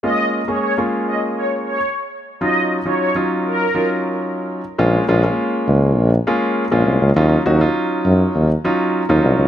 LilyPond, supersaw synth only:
\new Staff \with { instrumentName = "Supersaw synth" } { \time 4/4 \key bes \phrygian \tempo 4 = 101 ees''8 r16 des''16 des''16 r8 ees''16 r16 des''16 r16 des''8 r8. | ees''8 r16 des''16 des''16 r8 bes'8. r4. | r1 | r1 | }